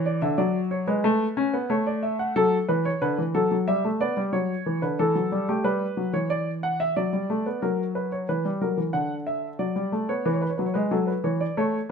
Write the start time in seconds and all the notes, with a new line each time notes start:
Already playing: E3
0.06 D5
0.22 D3 E5
0.38 F#3 D5
0.71 C#5
0.87 G#3 B4
1.04 A3
1.37 C#4
1.54 B3
1.70 A3 C#5
1.87 D5
2.03 E5
2.19 F#5
2.36 F#3 A4
2.69 E3 B4
2.85 C#5
3.02 D3 B4
3.18 E3
3.35 F#3 A4
3.51 F#3
3.68 G3 E5
3.85 A3
4.01 B3 D5
4.17 G3
4.33 F#3 C#5
4.66 E3
4.82 D3 B4
4.99 E3 A4
5.15 F#3
5.32 G3
5.49 A3 G4
5.64 G3 B4
5.97 F#3
6.13 E3 C#5
6.30 D5
6.63 F#5
6.80 E5
6.96 F#3 D5
7.13 G3
7.30 A3
7.46 B3
7.62 F#3 A#4
7.95 B4
8.12 C#5
8.29 E3 B4
8.45 G3
8.61 F#3 A#4
8.77 E3
8.93 D3 F#5
9.27 E5
9.59 F#3 D5
9.76 G3
9.92 A3
10.09 B3 C#5
10.26 E3 B4
10.33 C#5
10.42 B4
10.50 C#5
10.58 F#3 B4
10.66 C#5
10.74 G#3 B4
10.91 F#3 A4
11.07 B4
11.24 E3 C#5
11.41 D5
11.57 A3 C#5